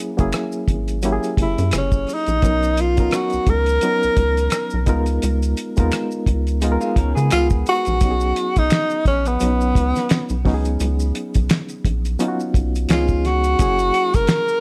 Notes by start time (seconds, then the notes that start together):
Already playing: F#3 A#3 C#4 E4 G#4
0.17 F#1 F#3 A#3 C#4 E4 G#4, kick, closed hi-hat, maracas
0.33 finger snap, cross-stick, closed hi-hat, maracas
0.52 maracas
0.68 G#1, kick, closed hi-hat
0.88 closed hi-hat, maracas
1.02 F#3 A#3 C#4 E4 G4, closed hi-hat, maracas
1.13 G#4
1.23 closed hi-hat, maracas
1.37 F#1, kick, closed hi-hat
1.42 E4
1.58 F#2, closed hi-hat, maracas
1.71 F#1, finger snap, cross-stick, closed hi-hat, maracas
1.78 C#4
1.92 kick, maracas
2.07 cross-stick, open hi-hat, maracas
2.14 D#4
2.26 A#1, closed hi-hat, maracas
2.42 B1 F#3 B3 C#4 D#4 A#4, kick, closed hi-hat, maracas
2.62 closed hi-hat, maracas
2.77 F4, closed hi-hat, maracas
2.97 F#3 B3 C#4 D#4 A#4, kick, closed hi-hat, maracas
3.11 finger snap, cross-stick, closed hi-hat, maracas
3.15 F#4
3.30 C#2, closed hi-hat, maracas
3.47 C#2 A#4, kick, closed hi-hat
3.66 closed hi-hat, maracas
3.81 F#3 B3 C#4 D#4, closed hi-hat, maracas
3.85 A#4
4.03 C#2, maracas
4.17 C#2, kick, closed hi-hat
4.37 closed hi-hat, maracas
4.50 finger snap, cross-stick, closed hi-hat, maracas
4.70 B1, maracas
4.86 C#2 G#3 B3 D#4 F4 A#4, kick, cross-stick, closed hi-hat, maracas
5.06 closed hi-hat, maracas
5.22 C#2, closed hi-hat, maracas
5.43 closed hi-hat, maracas
5.57 closed hi-hat, maracas
5.77 D#2 G#3 B3 D#4 F4 A#4, kick, closed hi-hat, maracas
5.92 finger snap, cross-stick, closed hi-hat, maracas
6.11 maracas
6.26 C#2, kick, closed hi-hat
6.47 closed hi-hat, maracas
6.61 G#3 B3 D#4 F4 G#4, closed hi-hat, maracas
6.72 A#4
6.81 G#3 F4, maracas
6.96 C#2 C#4 A#4, kick, closed hi-hat
7.15 C#3 B3 G#4, closed hi-hat, maracas
7.30 C#2 F4, finger snap, cross-stick, closed hi-hat, maracas
7.50 kick, maracas
7.66 F#4, cross-stick, closed hi-hat, maracas
7.85 A#1, closed hi-hat, maracas
8.01 B1 F#3 B3 C#4 D#4 G4, kick, closed hi-hat, maracas
8.11 G#4
8.21 maracas
8.36 closed hi-hat
8.56 B1 D#4, kick, closed hi-hat, maracas
8.70 finger snap, snare, closed hi-hat, maracas
8.73 finger snap
8.90 closed hi-hat, maracas
9.05 A#1 C#4, kick, closed hi-hat
9.25 B3, closed hi-hat, maracas
9.40 B1 F#3 B3 C#4 D#4 F#4, closed hi-hat, maracas
9.61 maracas
9.75 C#2, kick, closed hi-hat, maracas
9.96 snare, closed hi-hat, maracas
10.09 finger snap, snare, closed hi-hat, maracas
10.29 B1, closed hi-hat, maracas
10.45 C#2 F#3 B3 C#4 D#4 F#4, kick, snare, open hi-hat
10.54 G#4
10.65 closed hi-hat, maracas
10.80 C#2, closed hi-hat, maracas
11.00 maracas
11.15 closed hi-hat
11.34 B1, kick, closed hi-hat, maracas
11.49 finger snap, snare, closed hi-hat, maracas
11.51 finger snap
11.69 closed hi-hat, maracas
11.85 A#1, kick, closed hi-hat
12.05 closed hi-hat, maracas
12.19 F#3 B3 C#4 D#4 F4, closed hi-hat, maracas
12.28 F#4
12.40 maracas
12.54 B1, kick, closed hi-hat, maracas
12.76 closed hi-hat, maracas
12.89 C#2 F3 B3 C#4 D#4 F4 G#4, finger snap, snare, closed hi-hat, maracas
13.08 kick, maracas
13.25 F#4, snare, closed hi-hat
13.44 closed hi-hat, maracas
13.59 F#1 F#3 A#3 C#4 E4 G#4, kick, closed hi-hat, maracas
13.79 closed hi-hat, maracas
13.94 closed hi-hat
14.14 F#1 A#4, kick, closed hi-hat, maracas
14.27 finger snap, snare, closed hi-hat, maracas
14.49 maracas